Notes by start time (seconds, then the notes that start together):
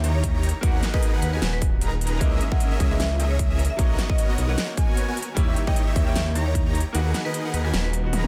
Already playing: D#2 G3 A#3 C#4 E4
0.04 D#3 D#4 G4 C#5 A#5, closed hi-hat
0.15 C#5
0.24 kick, closed hi-hat
0.34 D#3 D#4 G4 C#5 A#5
0.43 closed hi-hat
0.49 closed hi-hat
0.61 D#2 D#3 A#3 B3 D#4 F#4 G#4 A#4 B4 F#5, kick, closed hi-hat
0.83 snare, closed hi-hat
0.94 D#3 D#4 G#4 A#4 B4 D#5, kick
1.03 B4, closed hi-hat
1.14 D#3 D#4 G#4 A#4 B4 F#5
1.22 D#2 B4, closed hi-hat
1.33 D#3 B3 D#4 F#4 G#4 A#4 B4 G#5
1.42 D#1 B4, snare, closed hi-hat
1.53 B4
1.62 kick, closed hi-hat
1.81 D#3 D#4 G#4 A#4 B4 A#5, closed hi-hat
2.01 closed hi-hat
2.07 closed hi-hat
2.19 C#2 E3 G#3 A#3 C#4 D#4 G#4 D#5 E5, kick, closed hi-hat
2.41 closed hi-hat
2.52 C#4 G#4 A#4 D#5 E5 F#5, kick
2.60 closed hi-hat
2.71 C#4 G#4 A#4 D#5 E5
2.80 C#2, kick, closed hi-hat
2.89 E3 G#3 A#3 C#4 D#4 G#4 A#4 D#5 E5
3.00 C#2 E5, snare, closed hi-hat
3.20 C#4 G#4 A#4 D#5 E5, closed hi-hat
3.31 C#5
3.39 kick, closed hi-hat
3.50 C#4 G#4 A#4 D#5 E5
3.59 closed hi-hat
3.65 closed hi-hat
3.70 E5
3.77 B1 F#3 A#3 B3 C#4 F#4 A#4 C#5 D#5, kick, closed hi-hat
3.81 D#4
3.99 snare, closed hi-hat
4.10 B3 F#4 A#4 C#5 D#5, kick
4.18 closed hi-hat
4.29 B3 F#4 A#4 C#5 D#5
4.38 B1, closed hi-hat
4.47 F#3 A#3 B3 C#4 F#4 A#4 C#5 D#5 F#5
4.51 D#4
4.58 snare, closed hi-hat
4.77 B3 F#4 A#4 C#5 G#5, kick, closed hi-hat
4.97 closed hi-hat
5.08 B3 F#4 A#4 C#5 G#5
5.17 closed hi-hat
5.22 closed hi-hat
5.35 D#2 D#3 G3 A#3 C#4 D#4 E4 G4 C#5 E5, kick, closed hi-hat
5.56 closed hi-hat
5.67 D#3 D#4 G4 C#5 D#5 G5, kick
5.76 closed hi-hat
5.87 D#3 D#4 G4 C#5 E5
5.96 D#2, kick, closed hi-hat
6.05 D#3 G3 A#3 C#4 D#4 G4 C#5 E5 G5
6.09 E4
6.16 D#2 E5, snare, closed hi-hat
6.35 D#3 D#4 G4 C#5 A#5, closed hi-hat
6.46 C#5
6.55 kick, closed hi-hat
6.66 D#3 D#4 G4 C#5 A#5
6.75 closed hi-hat
6.80 closed hi-hat
6.93 D#2 D#3 A#3 B3 D#4 F#4 G#4 A#4 B4 F#5, closed hi-hat
7.14 snare, closed hi-hat
7.25 D#3 D#4 G#4 A#4 B4 D#5
7.34 B4, closed hi-hat
7.45 D#3 D#4 G#4 A#4 B4 F#5
7.54 D#2 B4, closed hi-hat
7.64 D#3 A#3 B3 D#4 F#4 G#4 A#4 B4 G#5
7.73 D#1 B4, snare, closed hi-hat
7.84 B4
7.93 closed hi-hat
8.04 B3 D#4 F#4
8.13 D#3 D#4 G#4 A#4 B4 A#5, closed hi-hat, high tom
8.24 high tom